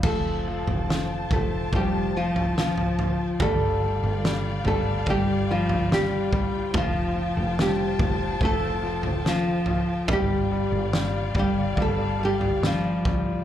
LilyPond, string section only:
\new Staff \with { instrumentName = "String section" } { \time 4/4 \key f \mixolydian \tempo 4 = 72 << { <c'' a''>1 | <d'' f''>1 | <c'' a''>1 | <d'' f''>1 | } \\ { <f' g''>1~ | <f' g''>1~ | <f' g''>1~ | <f' g''>1 | } >> }